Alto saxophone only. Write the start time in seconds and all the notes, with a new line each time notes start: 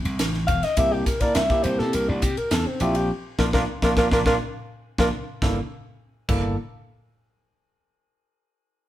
0.47 F5
0.64 D#5
0.77 E5
0.93 G4
1.06 A#4
1.21 D5
1.34 E5
1.63 C5
1.79 A4
1.94 A#4
2.09 D4
2.23 G4
2.38 A#4
2.51 A4
2.67 C4
2.81 E4
2.96 G4
3.39 A#4
3.53 A#4
3.83 A#4
3.98 A#4
4.13 A#4
4.27 A#4
5.00 A#4